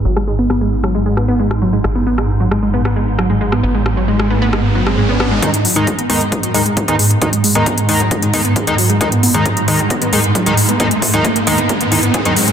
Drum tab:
HH |----------------|----------------|----------------|xxoxxxoxxxoxxxox|
SD |-r--r--r--r--r--|r--r--r--r--r--r|--r--r--r--r--r-|----------------|
BD |----------------|----------------|----------------|o---o---o---o---|

HH |xxoxxxoxxxoxxxox|xxoxxxoxxxoxxxox|xxoxxxoxxxoxxxox|
SD |----------------|----------------|----------------|
BD |o---o---o---o---|o---o---o---o---|o-o-o---o---o---|